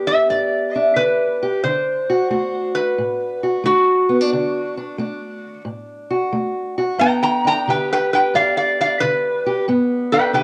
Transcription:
Already playing: steel-string acoustic guitar D3 B3 D4 G4
0.07 resonator guitar played with a steel bar E5
0.30 steel-string acoustic guitar G2, resonator guitar played with a steel bar D5
0.75 steel-string acoustic guitar D4, resonator guitar played with a steel bar E5
0.96 steel-string acoustic guitar D3, resonator guitar played with a steel bar B4
1.43 steel-string acoustic guitar G4
1.64 steel-string acoustic guitar D3 D4, resonator guitar played with a steel bar C5
2.10 steel-string acoustic guitar F#4
2.30 steel-string acoustic guitar A3 F#4
2.75 resonator guitar played with a steel bar B4
2.98 steel-string acoustic guitar A2
3.43 steel-string acoustic guitar F#4
3.64 steel-string acoustic guitar A3, resonator guitar played with a steel bar F#4
4.09 steel-string acoustic guitar B3
4.21 steel-string acoustic guitar D4
4.33 steel-string acoustic guitar D3 D4
4.77 steel-string acoustic guitar D4
4.98 steel-string acoustic guitar A3 D4
5.65 steel-string acoustic guitar A2
6.11 steel-string acoustic guitar F#4
6.33 steel-string acoustic guitar A3
6.78 steel-string acoustic guitar F#4
6.98 steel-string acoustic guitar G2 B3, resonator guitar played with a steel bar G5 A#5
7.23 resonator guitar played with a steel bar G5 A#5
7.45 steel-string acoustic guitar D4, resonator guitar played with a steel bar G5 A#5
7.68 steel-string acoustic guitar D3 G4, resonator guitar played with a steel bar B4 G5
7.93 resonator guitar played with a steel bar B4 G5
8.13 resonator guitar played with a steel bar B4 G5
8.34 steel-string acoustic guitar G2, resonator guitar played with a steel bar D5 F5
8.57 resonator guitar played with a steel bar D5 F5
8.80 steel-string acoustic guitar D4, resonator guitar played with a steel bar D5 F5
9.00 steel-string acoustic guitar D3, resonator guitar played with a steel bar B4
9.46 steel-string acoustic guitar G4
9.68 steel-string acoustic guitar G2 B3
10.12 steel-string acoustic guitar D4, resonator guitar played with a steel bar B4 G5
10.33 steel-string acoustic guitar D3 G4, resonator guitar played with a steel bar B4 G5

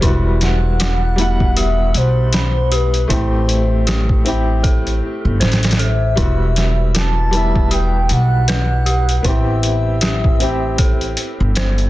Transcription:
0.01 upright bass E1, upright piano G3 B3 E4, synth bell E4, kick, closed hi-hat
0.06 upright piano F#4
0.41 soft synth lead F#5, snare, closed hi-hat
0.80 synth bell F#4, snare, closed hi-hat
1.16 upright piano B2 G3 E4, closed hi-hat
1.21 upright piano F#5
1.40 kick
1.57 synth bell G4, soft synth lead E5, closed hi-hat
1.94 upright bass B1, soft synth lead C5, closed hi-hat
2.33 synth bell B5, snare, closed hi-hat
2.72 synth bell G4, soft synth lead B4, closed hi-hat
2.94 closed hi-hat
3.08 upright bass A1, upright piano A3 C4 E4, synth bell E4, kick, closed hi-hat
3.13 upright piano G4, soft synth lead C5
3.49 closed hi-hat
3.87 synth bell G4, snare, closed hi-hat
4.09 kick
4.25 upright piano C4 E4 G4, closed hi-hat
4.63 synth bell A4, kick, closed hi-hat
4.87 closed hi-hat
5.25 upright bass G1
5.40 upright bass A1, synth bell C5, snare, closed hi-hat
5.52 snare, closed hi-hat
5.63 snare, closed hi-hat
5.71 snare, closed hi-hat
5.79 synth bell A4, soft synth lead E5, closed hi-hat
6.16 upright bass E1, upright piano G3 B3 E4, synth bell E4, kick, closed hi-hat
6.21 upright piano F#4
6.56 snare, closed hi-hat
6.95 synth bell F#4, soft synth lead A5, snare, closed hi-hat
7.31 upright piano G3 B3 E4, closed hi-hat
7.37 upright piano E5
7.55 kick
7.71 synth bell G4, soft synth lead G5, closed hi-hat
8.09 upright bass B1, soft synth lead F#5, closed hi-hat
8.48 synth bell B4, soft synth lead F#5, snare, closed hi-hat
8.86 synth bell G4, closed hi-hat
9.09 closed hi-hat
9.23 upright bass A1, upright piano B3 C4 E4, synth bell E4, soft synth lead E5, kick, closed hi-hat
9.29 upright piano G4
9.63 soft synth lead E5, closed hi-hat
10.01 synth bell G4, snare, closed hi-hat
10.24 kick
10.40 upright piano C4 E4 G4, closed hi-hat
10.78 synth bell A4, kick, closed hi-hat
11.01 closed hi-hat
11.17 closed hi-hat
11.40 upright bass G1
11.55 synth bell C5, snare, closed hi-hat
11.78 closed hi-hat

